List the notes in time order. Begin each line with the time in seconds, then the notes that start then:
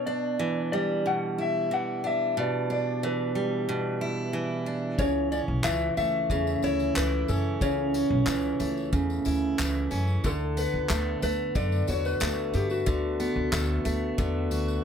Already playing: B2 B3
0.06 D4 D5
0.39 E3
0.72 G3 D5
1.06 B2 F#5
1.38 E4 E5
1.71 E3 F#5
2.04 D4 E5
2.37 B2 D5
2.70 D4 D5
3.03 E3 B4
3.35 G3
3.69 B2
4.01 E4
4.33 E3
4.66 D4
4.98 C#2 C#3 C#5, kick, tambourine
5.32 C#4 D5, tambourine
5.48 B1
5.64 C#2 E3 E5, clap, tambourine
5.97 C#2 A3 E5, tambourine
6.30 E2 C#3, kick, tambourine
6.47 tambourine
6.63 D2 E4 C#5, tambourine
6.80 tambourine
6.95 C#2 E3 B4, clap, tambourine
7.28 F#2 C#4 A4, tambourine
7.61 C#2 C#3 C#5, kick, tambourine
7.94 C#4, tambourine
8.10 B1
8.27 C#2 E3, clap, tambourine
8.60 C#2 A3, tambourine
8.77 tambourine
8.93 E2 C#3, kick, tambourine
9.10 tambourine
9.25 D2 E4, tambourine
9.58 C#2 E3, clap, tambourine
9.91 F#2 C#4, tambourine
10.07 tambourine
10.24 D2 D3 A4, kick, tambourine
10.57 B3 B4, tambourine
10.74 C#2
10.90 D2 A3, clap, tambourine
11.22 D2 A3 B4, tambourine
11.55 F#2 D3 D5, kick, tambourine
11.72 tambourine
11.87 E2 F#4, tambourine
11.89 C#5, tambourine
12.05 B4, tambourine
12.20 D2 A3, clap, tambourine
12.54 G2 B3 G4, tambourine
12.70 F#4, tambourine
12.86 D2 D3, kick, tambourine
13.20 B3, tambourine
13.36 C#2
13.52 D2 A3, clap, tambourine
13.85 D2 A3, tambourine
14.18 E2 D3, kick, tambourine
14.51 D2 F#4, tambourine
14.68 tambourine